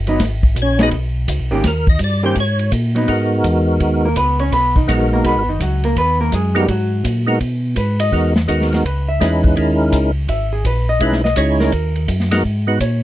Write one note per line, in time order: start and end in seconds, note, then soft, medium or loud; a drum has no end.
0.00 0.19 G1 medium
0.07 0.19 F#3 medium
0.07 0.19 B3 medium
0.07 0.20 D#4 loud
0.07 ride soft
0.19 0.55 G#1 medium
0.19 kick soft
0.19 snare soft
0.19 ride medium
0.43 kick medium
0.56 0.91 A#1 medium
0.56 kick soft
0.56 hi-hat pedal medium
0.56 ride medium
0.62 0.82 C#4 medium
0.62 0.82 C#5 medium
0.79 0.91 F#3 medium
0.79 0.91 B3 medium
0.79 0.91 D#4 medium
0.79 0.89 D#4 medium
0.79 0.89 G#4 medium
0.79 snare medium
0.79 ride medium
0.83 0.90 B4 medium
0.83 0.90 D#5 loud
0.91 1.27 B1 medium
0.91 kick soft
0.91 ride medium
1.28 1.40 C#2 loud
1.28 kick soft
1.28 hi-hat pedal medium
1.28 ride medium
1.39 1.52 B1 medium
1.51 1.63 G#1 medium
1.51 1.63 D#3 medium
1.51 1.63 A#3 medium
1.51 1.63 C#4 medium
1.51 1.63 G4 medium
1.64 1.99 D#2 medium
1.64 1.88 A#4 medium
1.64 kick soft
1.64 snare soft
1.64 ride medium
1.87 2.01 D#5 loud
1.87 kick medium
1.99 2.35 G2 medium
1.99 kick soft
1.99 hi-hat pedal soft
1.99 ride medium
2.04 2.25 D5 medium
2.23 2.35 D#3 medium
2.23 2.35 A#3 medium
2.23 2.35 C#4 medium
2.23 2.35 G4 medium
2.23 2.37 C5 medium
2.35 2.71 G#2 medium
2.35 kick soft
2.35 ride medium
2.40 2.72 C#5 loud
2.59 ride soft
2.72 3.07 A#2 loud
2.72 kick soft
2.72 hi-hat pedal medium
2.72 ride medium
2.95 3.07 F#3 medium
2.95 3.07 B3 medium
2.95 3.08 D#4 medium
2.95 ride soft
3.08 3.43 G#2 medium
3.08 4.09 G#3 medium
3.08 4.09 B3 medium
3.08 4.09 D#4 medium
3.08 4.09 F#4 soft
3.08 4.09 A#4 medium
3.08 kick soft
3.08 ride medium
3.44 3.79 E2 medium
3.44 kick soft
3.44 hi-hat pedal soft
3.44 ride medium
3.80 4.15 D#2 medium
3.80 kick soft
3.80 ride medium
4.05 4.17 A#3 medium
4.05 4.17 A#4 medium
4.16 4.51 C#2 medium
4.16 4.40 B3 medium
4.16 4.39 B4 medium
4.16 kick soft
4.16 hi-hat pedal medium
4.16 ride medium
4.39 4.53 C#4 medium
4.39 4.52 C#5 medium
4.39 ride soft
4.52 4.87 B1 medium
4.52 4.76 B3 medium
4.52 4.75 B4 medium
4.52 kick soft
4.52 ride medium
4.76 4.88 D#3 soft
4.76 4.88 D#4 soft
4.76 kick medium
4.88 5.23 A#1 medium
4.88 5.11 F#3 medium
4.88 5.43 G#3 medium
4.88 5.43 B3 medium
4.88 5.43 D#4 medium
4.88 5.43 F#4 medium
4.88 5.11 F#4 medium
4.88 5.43 A#4 medium
4.88 kick soft
4.88 hi-hat pedal medium
4.88 ride medium
5.13 5.25 A#3 medium
5.13 5.25 A#4 medium
5.24 5.36 B1 medium
5.24 5.48 B3 medium
5.24 5.48 B4 medium
5.24 kick soft
5.24 ride medium
5.35 5.48 G#1 medium
5.47 5.59 F#1 medium
5.47 5.61 D#3 soft
5.47 5.61 D#4 medium
5.60 5.95 C#2 medium
5.60 5.84 F#3 medium
5.60 5.84 F#4 medium
5.60 kick soft
5.60 hi-hat pedal medium
5.60 ride medium
5.83 5.97 A#3 medium
5.83 5.97 A#4 medium
5.83 ride soft
5.96 6.31 D#2 medium
5.96 6.20 B3 medium
5.96 6.20 B4 medium
5.96 kick soft
5.96 ride medium
6.21 6.33 A#3 medium
6.21 6.33 A#4 medium
6.32 6.67 F#2 medium
6.32 6.56 G#3 medium
6.32 6.56 G#4 medium
6.32 kick soft
6.32 hi-hat pedal medium
6.32 ride medium
6.55 6.69 G3 medium
6.55 6.67 G#3 medium
6.55 6.67 B3 medium
6.55 6.67 D#4 medium
6.55 6.67 F#4 medium
6.55 6.68 G4 medium
6.55 6.68 A#4 medium
6.55 ride soft
6.68 7.04 G#2 medium
6.68 7.37 F#3 medium
6.68 7.37 F#4 medium
6.68 kick soft
6.68 ride medium
7.04 7.39 A#2 medium
7.04 kick soft
7.04 hi-hat pedal medium
7.04 ride medium
7.27 7.39 G#3 medium
7.27 7.39 B3 medium
7.27 7.39 D#4 medium
7.27 7.39 F#4 medium
7.27 7.40 A#4 medium
7.40 7.75 B2 medium
7.40 kick soft
7.40 ride medium
7.76 8.11 G#2 medium
7.76 8.00 B4 medium
7.76 kick soft
7.76 hi-hat pedal soft
7.76 ride medium
8.00 8.33 D#5 loud
8.00 ride medium
8.12 8.47 E2 medium
8.12 8.33 G#3 soft
8.12 8.34 B3 soft
8.12 8.34 D#4 soft
8.12 8.34 F#4 soft
8.12 8.34 A#4 medium
8.12 kick soft
8.36 snare medium
8.48 8.83 D#2 medium
8.48 8.84 G#3 medium
8.48 8.85 B3 medium
8.48 8.85 D#4 medium
8.48 8.85 F#4 medium
8.48 8.85 A#4 medium
8.48 kick soft
8.48 hi-hat pedal medium
8.48 ride medium
8.61 snare soft
8.73 snare soft
8.73 ride soft
8.85 9.20 C#2 medium
8.85 9.08 B4 medium
8.85 kick soft
8.85 ride medium
9.09 9.42 E5 medium
9.20 9.56 E2 medium
9.20 9.55 G#3 medium
9.20 9.55 C#4 soft
9.20 9.56 D#4 soft
9.20 9.56 E4 medium
9.20 9.56 B4 medium
9.20 kick soft
9.20 snare soft
9.20 hi-hat pedal medium
9.20 ride medium
9.44 kick medium
9.56 9.91 D#2 medium
9.56 10.11 G#3 medium
9.56 10.11 C#4 medium
9.56 10.11 D#4 medium
9.56 10.11 E4 medium
9.56 10.12 A#4 medium
9.56 kick soft
9.56 ride medium
9.92 10.27 C#2 medium
9.92 kick soft
9.92 hi-hat pedal medium
9.92 ride medium
10.28 10.64 G#1 medium
10.28 10.52 E5 medium
10.28 kick soft
10.28 ride medium
10.53 10.65 G#4 medium
10.64 11.00 A#1 medium
10.64 10.88 B4 medium
10.64 kick soft
10.64 hi-hat pedal soft
10.64 ride medium
10.89 11.02 D#5 loud
11.00 11.35 B1 medium
11.00 11.22 G#3 medium
11.00 11.22 C#4 medium
11.00 11.22 D#4 medium
11.00 11.22 E4 medium
11.00 11.23 B4 medium
11.00 11.24 E5 loud
11.00 kick soft
11.00 ride medium
11.12 snare soft
11.24 11.36 D#5 loud
11.24 snare soft
11.36 11.71 C#2 medium
11.36 11.73 G#3 medium
11.36 11.73 C#4 medium
11.36 11.73 D#4 medium
11.36 11.73 E4 medium
11.36 11.60 C#5 medium
11.36 11.73 C#5 medium
11.36 kick soft
11.36 hi-hat pedal medium
11.36 ride medium
11.60 12.06 A#4 medium
11.60 snare soft
11.72 12.08 D#2 medium
11.72 kick soft
11.72 ride medium
11.96 ride soft
12.08 12.43 F#2 medium
12.08 kick soft
12.08 hi-hat pedal medium
12.08 ride medium
12.20 snare soft
12.31 12.43 G#3 medium
12.31 12.43 B3 medium
12.31 12.44 D#4 medium
12.31 12.44 F#4 medium
12.31 12.44 A#4 medium
12.31 snare soft
12.31 ride medium
12.44 12.79 G#2 medium
12.44 kick soft
12.67 12.79 G#3 medium
12.67 12.79 B3 medium
12.67 12.79 D#4 medium
12.67 12.79 F#4 medium
12.67 12.80 B4 medium
12.80 13.03 A#2 medium
12.80 13.03 C#5 loud
12.80 kick soft
12.80 hi-hat pedal medium
12.80 ride medium